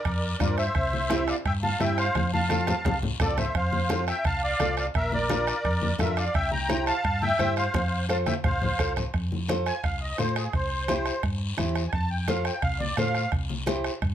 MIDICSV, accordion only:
0, 0, Header, 1, 2, 480
1, 0, Start_track
1, 0, Key_signature, -1, "major"
1, 0, Tempo, 349243
1, 1036, Time_signature, 4, 2, 24, 8
1, 19441, End_track
2, 0, Start_track
2, 0, Title_t, "Accordion"
2, 0, Program_c, 0, 21
2, 0, Note_on_c, 0, 70, 60
2, 0, Note_on_c, 0, 74, 77
2, 508, Note_off_c, 0, 70, 0
2, 539, Note_off_c, 0, 74, 0
2, 559, Note_on_c, 0, 70, 60
2, 560, Note_on_c, 0, 74, 73
2, 781, Note_off_c, 0, 70, 0
2, 781, Note_off_c, 0, 74, 0
2, 797, Note_on_c, 0, 72, 66
2, 799, Note_on_c, 0, 76, 86
2, 1702, Note_off_c, 0, 72, 0
2, 1760, Note_on_c, 0, 77, 89
2, 1768, Note_on_c, 0, 74, 73
2, 1786, Note_off_c, 0, 76, 0
2, 1868, Note_off_c, 0, 77, 0
2, 1874, Note_off_c, 0, 74, 0
2, 1999, Note_on_c, 0, 79, 95
2, 2002, Note_on_c, 0, 76, 74
2, 2107, Note_off_c, 0, 79, 0
2, 2109, Note_off_c, 0, 76, 0
2, 2242, Note_on_c, 0, 77, 77
2, 2244, Note_on_c, 0, 81, 95
2, 2463, Note_off_c, 0, 77, 0
2, 2484, Note_on_c, 0, 76, 73
2, 2487, Note_on_c, 0, 79, 87
2, 2488, Note_off_c, 0, 81, 0
2, 2704, Note_off_c, 0, 76, 0
2, 2729, Note_off_c, 0, 79, 0
2, 2729, Note_on_c, 0, 72, 67
2, 2730, Note_on_c, 0, 77, 96
2, 3170, Note_off_c, 0, 72, 0
2, 3170, Note_off_c, 0, 77, 0
2, 3204, Note_on_c, 0, 77, 71
2, 3206, Note_on_c, 0, 81, 90
2, 4106, Note_off_c, 0, 77, 0
2, 4107, Note_off_c, 0, 81, 0
2, 4417, Note_on_c, 0, 74, 86
2, 4420, Note_on_c, 0, 69, 62
2, 4631, Note_off_c, 0, 74, 0
2, 4633, Note_off_c, 0, 69, 0
2, 4649, Note_on_c, 0, 72, 63
2, 4650, Note_on_c, 0, 76, 79
2, 4867, Note_off_c, 0, 72, 0
2, 4867, Note_off_c, 0, 76, 0
2, 4898, Note_on_c, 0, 77, 84
2, 4900, Note_on_c, 0, 72, 74
2, 5558, Note_off_c, 0, 77, 0
2, 5559, Note_off_c, 0, 72, 0
2, 5611, Note_on_c, 0, 79, 99
2, 5615, Note_on_c, 0, 76, 74
2, 5828, Note_off_c, 0, 79, 0
2, 5830, Note_off_c, 0, 76, 0
2, 5852, Note_on_c, 0, 81, 99
2, 5857, Note_on_c, 0, 77, 83
2, 6069, Note_off_c, 0, 81, 0
2, 6071, Note_off_c, 0, 77, 0
2, 6094, Note_on_c, 0, 74, 77
2, 6096, Note_on_c, 0, 77, 104
2, 6533, Note_off_c, 0, 74, 0
2, 6534, Note_off_c, 0, 77, 0
2, 6574, Note_on_c, 0, 77, 89
2, 6578, Note_on_c, 0, 74, 59
2, 6678, Note_off_c, 0, 77, 0
2, 6681, Note_off_c, 0, 74, 0
2, 6817, Note_on_c, 0, 76, 98
2, 6824, Note_on_c, 0, 70, 74
2, 7035, Note_off_c, 0, 70, 0
2, 7055, Note_off_c, 0, 76, 0
2, 7062, Note_on_c, 0, 70, 71
2, 7063, Note_on_c, 0, 74, 90
2, 8195, Note_off_c, 0, 70, 0
2, 8196, Note_off_c, 0, 74, 0
2, 8250, Note_on_c, 0, 70, 66
2, 8251, Note_on_c, 0, 76, 83
2, 8468, Note_off_c, 0, 70, 0
2, 8480, Note_on_c, 0, 77, 89
2, 8487, Note_on_c, 0, 74, 63
2, 8492, Note_off_c, 0, 76, 0
2, 8702, Note_off_c, 0, 77, 0
2, 8706, Note_off_c, 0, 74, 0
2, 8719, Note_on_c, 0, 76, 73
2, 8725, Note_on_c, 0, 79, 107
2, 8941, Note_off_c, 0, 76, 0
2, 8944, Note_off_c, 0, 79, 0
2, 8962, Note_on_c, 0, 82, 98
2, 8964, Note_on_c, 0, 79, 79
2, 9407, Note_off_c, 0, 82, 0
2, 9408, Note_off_c, 0, 79, 0
2, 9435, Note_on_c, 0, 81, 104
2, 9442, Note_on_c, 0, 77, 91
2, 9886, Note_off_c, 0, 77, 0
2, 9925, Note_on_c, 0, 79, 116
2, 9928, Note_on_c, 0, 76, 88
2, 9931, Note_off_c, 0, 81, 0
2, 10368, Note_off_c, 0, 79, 0
2, 10369, Note_off_c, 0, 76, 0
2, 10401, Note_on_c, 0, 77, 86
2, 10404, Note_on_c, 0, 72, 72
2, 11069, Note_off_c, 0, 77, 0
2, 11070, Note_off_c, 0, 72, 0
2, 11125, Note_on_c, 0, 81, 95
2, 11129, Note_on_c, 0, 77, 72
2, 11231, Note_off_c, 0, 81, 0
2, 11235, Note_off_c, 0, 77, 0
2, 11358, Note_on_c, 0, 79, 90
2, 11367, Note_on_c, 0, 76, 74
2, 11466, Note_off_c, 0, 79, 0
2, 11473, Note_off_c, 0, 76, 0
2, 11599, Note_on_c, 0, 77, 91
2, 11606, Note_on_c, 0, 72, 65
2, 12268, Note_off_c, 0, 77, 0
2, 12271, Note_off_c, 0, 72, 0
2, 13280, Note_on_c, 0, 80, 99
2, 13511, Note_off_c, 0, 80, 0
2, 13516, Note_on_c, 0, 77, 81
2, 13749, Note_off_c, 0, 77, 0
2, 13761, Note_on_c, 0, 75, 84
2, 13991, Note_on_c, 0, 72, 93
2, 13992, Note_off_c, 0, 75, 0
2, 14226, Note_off_c, 0, 72, 0
2, 14249, Note_on_c, 0, 68, 72
2, 14476, Note_off_c, 0, 68, 0
2, 14496, Note_on_c, 0, 72, 89
2, 15418, Note_off_c, 0, 72, 0
2, 16338, Note_on_c, 0, 80, 70
2, 16373, Note_off_c, 0, 80, 0
2, 16396, Note_on_c, 0, 81, 97
2, 16629, Note_off_c, 0, 81, 0
2, 16635, Note_on_c, 0, 79, 80
2, 16869, Note_off_c, 0, 79, 0
2, 16878, Note_on_c, 0, 77, 86
2, 17110, Note_off_c, 0, 77, 0
2, 17124, Note_on_c, 0, 79, 82
2, 17353, Note_off_c, 0, 79, 0
2, 17353, Note_on_c, 0, 77, 94
2, 17587, Note_off_c, 0, 77, 0
2, 17589, Note_on_c, 0, 74, 92
2, 17821, Note_on_c, 0, 77, 102
2, 17825, Note_off_c, 0, 74, 0
2, 18293, Note_off_c, 0, 77, 0
2, 19441, End_track
0, 0, End_of_file